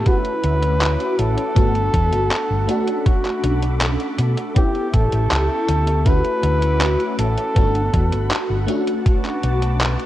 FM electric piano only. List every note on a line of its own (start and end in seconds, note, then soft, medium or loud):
0.04 1.48 A3 medium
0.04 1.48 C#4 medium
0.04 1.49 E4 medium
0.04 1.49 F#4 medium
1.55 2.60 A3 medium
1.55 2.61 B3 medium
1.55 2.61 D4 medium
1.55 2.62 F#4 medium
2.67 4.48 A3 medium
2.67 4.48 C#4 medium
2.67 4.49 D4 medium
2.67 4.49 F#4 loud
4.55 5.98 B3 medium
4.55 5.98 C#4 medium
4.55 5.99 E4 medium
4.55 5.99 G4 medium
6.04 7.48 A3 medium
6.04 7.48 C#4 medium
6.04 7.49 E4 medium
6.04 7.49 F#4 medium
7.54 8.60 A3 medium
7.54 8.61 B3 medium
7.54 8.61 D4 medium
7.54 8.62 F#4 medium
8.67 10.06 A3 loud
8.67 10.06 C#4 medium
8.67 10.06 D4 medium
8.67 10.06 F#4 loud